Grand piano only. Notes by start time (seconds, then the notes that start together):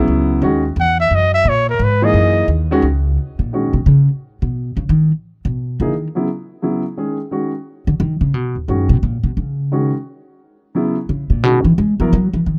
Already playing: C#3 F#3 B3 E4
0.42 D#3 G#3 C#4 F#4
2.02 E3 A#3 D#4 G#4
2.71 D#3 G#3 C#4 F#4
3.53 D#3 G#3 C#4 F#4
5.81 E3 A#3 D#4 G#4
6.15 C#3 F#3 B3 E4
6.62 C#3 F#3 B3 E4
6.97 D#3 G#3 C#4 G#4
7.31 D#3 G#3 C#4 F#4
8.68 D#3 G#3 C#4 F#4
9.72 D#3 G#3 C#4 F#4
10.75 C#3 F#3 B3 E4
11.44 D#3 G#3 C#4 F#4
12.00 F#3 B3 E4 A#4